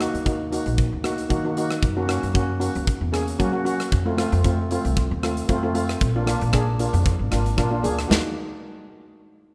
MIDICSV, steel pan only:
0, 0, Header, 1, 2, 480
1, 0, Start_track
1, 0, Key_signature, -6, "minor"
1, 0, Tempo, 522193
1, 1684, Time_signature, 4, 2, 24, 8
1, 8774, End_track
2, 0, Start_track
2, 0, Title_t, "Steel pan"
2, 0, Program_c, 0, 114
2, 0, Note_on_c, 0, 58, 83
2, 0, Note_on_c, 0, 63, 70
2, 4, Note_on_c, 0, 66, 91
2, 151, Note_off_c, 0, 63, 0
2, 152, Note_off_c, 0, 58, 0
2, 155, Note_off_c, 0, 66, 0
2, 235, Note_on_c, 0, 58, 80
2, 237, Note_on_c, 0, 63, 78
2, 238, Note_on_c, 0, 66, 78
2, 390, Note_off_c, 0, 58, 0
2, 391, Note_off_c, 0, 63, 0
2, 392, Note_off_c, 0, 66, 0
2, 475, Note_on_c, 0, 58, 79
2, 482, Note_on_c, 0, 66, 89
2, 483, Note_on_c, 0, 63, 80
2, 771, Note_off_c, 0, 58, 0
2, 774, Note_off_c, 0, 66, 0
2, 775, Note_off_c, 0, 63, 0
2, 954, Note_on_c, 0, 58, 80
2, 955, Note_on_c, 0, 63, 77
2, 958, Note_on_c, 0, 66, 88
2, 1110, Note_off_c, 0, 58, 0
2, 1110, Note_off_c, 0, 63, 0
2, 1111, Note_off_c, 0, 66, 0
2, 1189, Note_on_c, 0, 58, 82
2, 1191, Note_on_c, 0, 63, 78
2, 1194, Note_on_c, 0, 66, 87
2, 1273, Note_off_c, 0, 58, 0
2, 1274, Note_off_c, 0, 63, 0
2, 1276, Note_off_c, 0, 66, 0
2, 1327, Note_on_c, 0, 63, 71
2, 1331, Note_on_c, 0, 58, 78
2, 1335, Note_on_c, 0, 66, 84
2, 1396, Note_off_c, 0, 63, 0
2, 1398, Note_off_c, 0, 58, 0
2, 1400, Note_off_c, 0, 66, 0
2, 1446, Note_on_c, 0, 63, 76
2, 1447, Note_on_c, 0, 58, 84
2, 1451, Note_on_c, 0, 66, 92
2, 1663, Note_off_c, 0, 58, 0
2, 1663, Note_off_c, 0, 63, 0
2, 1665, Note_off_c, 0, 66, 0
2, 1805, Note_on_c, 0, 58, 82
2, 1809, Note_on_c, 0, 61, 69
2, 1809, Note_on_c, 0, 66, 89
2, 1876, Note_off_c, 0, 58, 0
2, 1878, Note_off_c, 0, 61, 0
2, 1878, Note_off_c, 0, 66, 0
2, 1908, Note_on_c, 0, 58, 88
2, 1914, Note_on_c, 0, 61, 77
2, 1914, Note_on_c, 0, 66, 86
2, 2067, Note_off_c, 0, 58, 0
2, 2070, Note_off_c, 0, 61, 0
2, 2070, Note_off_c, 0, 66, 0
2, 2150, Note_on_c, 0, 58, 81
2, 2153, Note_on_c, 0, 61, 79
2, 2154, Note_on_c, 0, 66, 86
2, 2308, Note_off_c, 0, 58, 0
2, 2310, Note_off_c, 0, 61, 0
2, 2310, Note_off_c, 0, 66, 0
2, 2386, Note_on_c, 0, 61, 79
2, 2390, Note_on_c, 0, 58, 83
2, 2391, Note_on_c, 0, 66, 93
2, 2687, Note_off_c, 0, 61, 0
2, 2689, Note_off_c, 0, 58, 0
2, 2690, Note_off_c, 0, 66, 0
2, 2870, Note_on_c, 0, 58, 82
2, 2874, Note_on_c, 0, 61, 77
2, 2877, Note_on_c, 0, 68, 95
2, 3029, Note_off_c, 0, 58, 0
2, 3031, Note_off_c, 0, 61, 0
2, 3032, Note_off_c, 0, 68, 0
2, 3116, Note_on_c, 0, 61, 85
2, 3117, Note_on_c, 0, 58, 86
2, 3122, Note_on_c, 0, 66, 97
2, 3198, Note_off_c, 0, 61, 0
2, 3199, Note_off_c, 0, 58, 0
2, 3201, Note_off_c, 0, 66, 0
2, 3237, Note_on_c, 0, 61, 70
2, 3239, Note_on_c, 0, 66, 96
2, 3241, Note_on_c, 0, 58, 78
2, 3313, Note_off_c, 0, 61, 0
2, 3314, Note_off_c, 0, 66, 0
2, 3315, Note_off_c, 0, 58, 0
2, 3351, Note_on_c, 0, 58, 75
2, 3354, Note_on_c, 0, 61, 76
2, 3357, Note_on_c, 0, 66, 102
2, 3577, Note_off_c, 0, 58, 0
2, 3578, Note_off_c, 0, 61, 0
2, 3579, Note_off_c, 0, 66, 0
2, 3728, Note_on_c, 0, 57, 91
2, 3732, Note_on_c, 0, 60, 75
2, 3732, Note_on_c, 0, 65, 91
2, 3799, Note_off_c, 0, 57, 0
2, 3800, Note_off_c, 0, 60, 0
2, 3800, Note_off_c, 0, 65, 0
2, 3836, Note_on_c, 0, 60, 80
2, 3837, Note_on_c, 0, 57, 84
2, 3841, Note_on_c, 0, 65, 99
2, 3992, Note_off_c, 0, 60, 0
2, 3993, Note_off_c, 0, 57, 0
2, 3995, Note_off_c, 0, 65, 0
2, 4086, Note_on_c, 0, 57, 85
2, 4093, Note_on_c, 0, 60, 82
2, 4094, Note_on_c, 0, 65, 88
2, 4237, Note_off_c, 0, 57, 0
2, 4241, Note_off_c, 0, 60, 0
2, 4242, Note_off_c, 0, 65, 0
2, 4329, Note_on_c, 0, 57, 87
2, 4335, Note_on_c, 0, 60, 85
2, 4339, Note_on_c, 0, 65, 101
2, 4620, Note_off_c, 0, 57, 0
2, 4623, Note_off_c, 0, 60, 0
2, 4625, Note_off_c, 0, 65, 0
2, 4807, Note_on_c, 0, 57, 86
2, 4811, Note_on_c, 0, 65, 92
2, 4813, Note_on_c, 0, 60, 70
2, 4958, Note_off_c, 0, 57, 0
2, 4960, Note_off_c, 0, 65, 0
2, 4961, Note_off_c, 0, 60, 0
2, 5040, Note_on_c, 0, 57, 100
2, 5047, Note_on_c, 0, 60, 90
2, 5049, Note_on_c, 0, 65, 99
2, 5121, Note_off_c, 0, 57, 0
2, 5125, Note_off_c, 0, 60, 0
2, 5125, Note_off_c, 0, 65, 0
2, 5169, Note_on_c, 0, 57, 84
2, 5176, Note_on_c, 0, 60, 75
2, 5177, Note_on_c, 0, 65, 95
2, 5239, Note_off_c, 0, 57, 0
2, 5243, Note_off_c, 0, 60, 0
2, 5244, Note_off_c, 0, 65, 0
2, 5282, Note_on_c, 0, 57, 94
2, 5283, Note_on_c, 0, 60, 76
2, 5284, Note_on_c, 0, 65, 96
2, 5502, Note_off_c, 0, 57, 0
2, 5503, Note_off_c, 0, 60, 0
2, 5504, Note_off_c, 0, 65, 0
2, 5661, Note_on_c, 0, 58, 76
2, 5661, Note_on_c, 0, 65, 91
2, 5663, Note_on_c, 0, 62, 70
2, 5725, Note_off_c, 0, 58, 0
2, 5725, Note_off_c, 0, 65, 0
2, 5726, Note_off_c, 0, 62, 0
2, 5758, Note_on_c, 0, 58, 94
2, 5760, Note_on_c, 0, 62, 77
2, 5763, Note_on_c, 0, 65, 94
2, 5914, Note_off_c, 0, 58, 0
2, 5915, Note_off_c, 0, 62, 0
2, 5916, Note_off_c, 0, 65, 0
2, 6002, Note_on_c, 0, 58, 83
2, 6006, Note_on_c, 0, 62, 79
2, 6008, Note_on_c, 0, 68, 96
2, 6156, Note_off_c, 0, 58, 0
2, 6158, Note_off_c, 0, 62, 0
2, 6159, Note_off_c, 0, 68, 0
2, 6246, Note_on_c, 0, 62, 81
2, 6248, Note_on_c, 0, 58, 97
2, 6250, Note_on_c, 0, 65, 88
2, 6538, Note_off_c, 0, 62, 0
2, 6539, Note_off_c, 0, 58, 0
2, 6540, Note_off_c, 0, 65, 0
2, 6720, Note_on_c, 0, 58, 82
2, 6722, Note_on_c, 0, 62, 79
2, 6726, Note_on_c, 0, 65, 89
2, 6875, Note_off_c, 0, 58, 0
2, 6875, Note_off_c, 0, 62, 0
2, 6877, Note_off_c, 0, 65, 0
2, 6960, Note_on_c, 0, 62, 87
2, 6967, Note_on_c, 0, 58, 94
2, 6968, Note_on_c, 0, 65, 100
2, 7041, Note_off_c, 0, 62, 0
2, 7044, Note_off_c, 0, 58, 0
2, 7045, Note_off_c, 0, 65, 0
2, 7088, Note_on_c, 0, 58, 83
2, 7090, Note_on_c, 0, 62, 82
2, 7090, Note_on_c, 0, 65, 89
2, 7159, Note_off_c, 0, 58, 0
2, 7159, Note_off_c, 0, 62, 0
2, 7160, Note_off_c, 0, 65, 0
2, 7197, Note_on_c, 0, 62, 76
2, 7200, Note_on_c, 0, 58, 91
2, 7204, Note_on_c, 0, 68, 96
2, 7419, Note_off_c, 0, 62, 0
2, 7421, Note_off_c, 0, 58, 0
2, 7423, Note_off_c, 0, 68, 0
2, 7432, Note_on_c, 0, 66, 79
2, 7433, Note_on_c, 0, 58, 78
2, 7436, Note_on_c, 0, 63, 74
2, 7662, Note_off_c, 0, 58, 0
2, 7662, Note_off_c, 0, 66, 0
2, 7664, Note_off_c, 0, 63, 0
2, 8774, End_track
0, 0, End_of_file